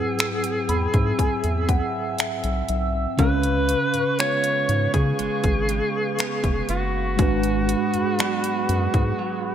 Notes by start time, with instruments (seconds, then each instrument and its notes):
Already playing: tine electric piano G#2 F#3 C4 E4 B4, analog synth pad C4 F#5 E6, alto saxophone G#4
0.19 finger snap, closed hi-hat
0.44 closed hi-hat
0.69 analog synth bass E2, analog synth pad E5, tine electric piano B5, closed hi-hat
0.94 analog synth bass G#2, kick, closed hi-hat
1.19 analog synth bass E2, tine electric piano G#5, kick, closed hi-hat
1.44 analog synth bass E2, closed hi-hat
1.69 tine electric piano F#5, kick, closed hi-hat
2.19 tine electric piano E5, finger snap, closed hi-hat
2.44 analog synth bass B1, closed hi-hat
2.69 analog synth bass B1, tine electric piano E5, closed hi-hat
3.17 analog synth bass C#2, tine electric piano C#3 C#4 F5, clean electric guitar C#3, analog synth pad B4 F5 C#6, alto saxophone B4, kick, closed hi-hat
3.22 tine electric piano A4
3.28 tine electric piano B4
3.43 closed hi-hat
3.69 closed hi-hat
3.94 analog synth bass G#2, closed hi-hat
4.19 clean electric guitar G#3 B3 F4, alto saxophone C#5, finger snap, closed hi-hat
4.44 closed hi-hat
4.69 analog synth bass G#2, closed hi-hat
4.94 analog synth bass C#3, alto saxophone G#4, kick, closed hi-hat
5.19 analog synth bass G#1, clean electric guitar G#3, closed hi-hat
5.44 analog synth bass G#1, kick, closed hi-hat
5.69 clean electric guitar G#3, closed hi-hat
6.19 clean electric guitar G#3 B3, finger snap, closed hi-hat
6.44 analog synth bass F1, kick, closed hi-hat
6.69 analog synth bass F#1, clean electric guitar B3, alto saxophone F#4, closed hi-hat
7.17 analog synth bass G#1, clean electric guitar G#2, tine electric piano G#3 D4 F#4, analog synth pad G#4 F#5 B5, kick, closed hi-hat
7.22 tine electric piano B4
7.43 closed hi-hat
7.69 closed hi-hat
7.94 analog synth bass F#2, closed hi-hat
8.19 clean electric guitar F#3 B3 D4, finger snap, closed hi-hat
8.44 closed hi-hat
8.69 analog synth bass F#2, closed hi-hat
8.94 analog synth bass G#2, kick, closed hi-hat
9.19 clean electric guitar F#3